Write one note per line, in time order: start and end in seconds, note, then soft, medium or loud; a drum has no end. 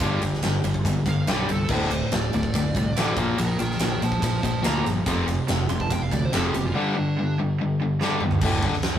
0.00 0.16 G1 medium
0.00 0.21 G2 medium
0.00 0.22 D3 loud
0.00 0.22 G3 loud
0.00 0.19 F4 loud
0.00 kick loud
0.00 ride loud
0.22 0.38 G1 medium
0.22 0.42 G2 medium
0.22 0.42 D3 medium
0.22 ride medium
0.34 snare soft
0.43 0.59 G1 medium
0.43 0.63 G2 medium
0.43 0.63 D3 medium
0.43 snare loud
0.43 ride loud
0.64 0.80 G1 medium
0.64 0.84 G2 medium
0.64 0.84 D3 medium
0.64 ride medium
0.74 kick medium
0.85 1.01 G1 medium
0.85 1.05 G2 medium
0.85 1.05 D3 medium
0.85 kick loud
0.85 ride medium
1.06 1.22 G1 medium
1.06 1.26 G2 medium
1.06 1.26 D3 medium
1.06 1.28 F5 medium
1.06 kick medium
1.06 ride medium
1.27 1.44 B1 medium
1.27 1.46 G2 medium
1.27 1.47 D3 loud
1.27 1.48 G3 medium
1.27 1.50 D5 medium
1.27 snare loud
1.27 ride medium
1.47 1.65 C2 medium
1.47 1.67 G2 medium
1.47 1.67 D3 medium
1.47 ride medium
1.52 1.70 D3 medium
1.52 1.73 A4 medium
1.69 2.01 D1 medium
1.69 1.89 D2 medium
1.69 1.90 A2 loud
1.69 1.90 D3 loud
1.69 kick loud
1.69 crash loud
1.73 2.12 C5 medium
1.90 2.10 D2 medium
1.90 2.10 A2 medium
1.90 ride medium
2.12 2.28 D1 medium
2.12 2.31 D2 medium
2.12 2.31 A2 medium
2.12 2.34 D5 medium
2.12 snare loud
2.12 ride medium
2.33 2.49 D1 medium
2.33 2.52 D2 medium
2.33 2.53 A2 medium
2.33 3.16 D5 loud
2.33 ride medium
2.43 kick medium
2.54 2.70 D1 medium
2.54 2.74 D2 medium
2.54 2.74 A2 medium
2.54 kick loud
2.54 ride loud
2.75 2.91 C2 medium
2.75 2.95 D2 medium
2.75 2.95 A2 medium
2.75 kick medium
2.75 ride medium
2.97 3.13 A1 medium
2.97 3.17 D2 loud
2.97 3.17 A2 loud
2.97 3.17 D3 loud
2.97 snare loud
2.97 ride medium
3.17 3.33 A#1 medium
3.17 3.37 A#2 medium
3.17 3.37 F3 medium
3.17 3.38 A#3 medium
3.17 kick loud
3.17 ride medium
3.38 3.55 A#1 loud
3.38 3.57 A#2 medium
3.38 3.57 F3 medium
3.38 3.58 A#4 medium
3.38 3.57 G5 loud
3.38 ride loud
3.59 3.75 A#1 medium
3.59 3.78 A#2 medium
3.59 3.78 F3 medium
3.59 3.79 A#4 medium
3.59 3.79 G5 loud
3.59 ride medium
3.71 snare soft
3.79 3.96 A#1 medium
3.79 4.00 A#2 medium
3.79 4.00 F3 medium
3.79 4.01 A#4 medium
3.79 4.02 G5 medium
3.79 snare loud
3.79 ride loud
4.01 4.17 A#1 medium
4.01 4.21 A#2 medium
4.01 4.21 F3 medium
4.01 4.22 C5 medium
4.01 4.22 A5 medium
4.01 ride medium
4.12 kick medium
4.22 4.38 A#1 medium
4.22 4.42 A#2 medium
4.22 4.42 F3 medium
4.22 4.42 C5 medium
4.22 4.44 A5 medium
4.22 kick loud
4.22 ride loud
4.43 4.59 A#1 medium
4.43 4.61 A#2 medium
4.43 4.62 F3 medium
4.43 4.63 C5 medium
4.43 4.65 A5 medium
4.43 kick medium
4.43 ride medium
4.62 4.80 D2 medium
4.62 4.83 A#2 medium
4.62 4.84 F3 loud
4.62 4.84 A#3 loud
4.62 4.86 A#5 loud
4.62 snare loud
4.62 ride medium
4.84 5.02 G1 medium
4.84 5.04 A#2 medium
4.84 5.04 F3 medium
4.84 ride medium
5.06 5.38 F1 loud
5.06 5.26 F2 loud
5.06 5.26 C3 medium
5.06 5.26 F3 loud
5.06 kick loud
5.06 ride loud
5.27 5.46 F2 medium
5.27 5.46 C3 medium
5.27 ride medium
5.48 5.65 F1 medium
5.48 5.68 F2 medium
5.48 5.68 C3 medium
5.48 snare loud
5.48 ride medium
5.69 5.86 F1 medium
5.69 5.89 F2 medium
5.69 5.89 C3 medium
5.69 5.81 C6 loud
5.69 ride medium
5.80 5.91 A5 medium
5.80 kick medium
5.91 6.07 F1 loud
5.91 6.10 F2 medium
5.91 6.10 C3 medium
5.91 6.03 G5 medium
5.91 kick loud
5.91 ride medium
6.03 6.13 F5 medium
6.12 6.27 D2 medium
6.12 6.31 F2 medium
6.12 6.31 C3 medium
6.12 6.25 D5 loud
6.12 kick medium
6.12 ride medium
6.25 6.35 C5 medium
6.32 6.49 F1 medium
6.32 6.52 F2 loud
6.32 6.53 C3 loud
6.32 6.53 F3 loud
6.32 6.44 A4 medium
6.32 snare loud
6.32 ride medium
6.45 6.54 G#4 loud
6.54 6.70 F#1 medium
6.54 6.73 F2 medium
6.54 6.74 C3 medium
6.54 6.66 G4 loud
6.54 ride medium
6.66 6.75 F4 medium
6.75 6.95 G2 medium
6.75 6.95 D3 medium
6.75 6.95 G3 loud
6.75 6.94 D4 loud
6.95 7.15 G2 medium
6.95 7.15 D3 medium
6.95 7.36 D4 loud
7.19 7.37 G2 medium
7.19 7.37 D3 medium
7.39 7.57 G2 medium
7.39 7.58 D3 medium
7.61 7.79 G2 medium
7.61 7.79 D3 medium
7.82 8.00 G2 medium
7.82 8.00 D3 medium
8.01 8.21 G2 loud
8.01 8.22 D3 medium
8.01 8.22 G3 loud
8.01 snare medium
8.10 high tom medium
8.20 8.41 G2 medium
8.20 8.41 D3 medium
8.20 mid tom medium
8.31 floor tom medium
8.41 8.62 D1 loud
8.41 8.63 D2 loud
8.41 8.64 A2 loud
8.41 kick loud
8.41 crash loud
8.41 crash medium
8.45 8.64 D3 loud
8.63 8.73 G1 loud
8.63 8.74 G2 loud
8.63 8.75 D3 loud
8.63 kick loud
8.73 muted fingered electric bass stroke soft
8.73 muted overdriven electric guitar stroke medium
8.73 snare soft
8.82 snare loud
8.82 crash medium
8.95 8.99 D1 medium
8.95 8.99 D2 medium
8.95 8.99 A2 medium